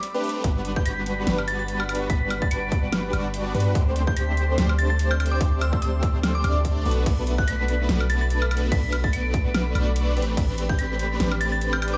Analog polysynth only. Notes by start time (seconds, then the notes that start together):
0.14 A3 C4 D4 G4 B4
0.44 G3 B3 D4 F#4 B4
1.27 G3 B3 D4 F#4 B4
2.10 G3 B3 D4 F#4 B4
3.13 G3 B3 D4 F#4 D5
3.54 G3 B3 D4 F#4 B4
3.75 A3 C4 D4 G4 C5
4.58 A3 C4 D4 G4 C5
5.41 A3 C4 D4 G4 C5
6.44 A3 C4 D4 G4 D5
6.85 A3 B3 D4 F#4 B4
7.06 A3 B3 D4
7.89 B3 D4 F#4 B4
8.72 A3 B3 D4 F#4 B4
9.75 A3 B3 D4 F#4 D5
10.17 A3 C4 D4 G4 B4
10.37 A3 C4 D4 G4 B4
11.20 A3 C4 D4 G4 B4